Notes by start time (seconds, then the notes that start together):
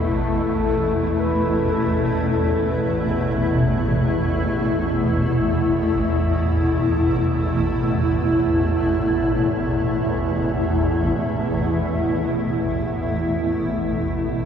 Already playing: A1 E2 B2 A3 E4 A4
1.20 B4
1.72 A4
2.70 B4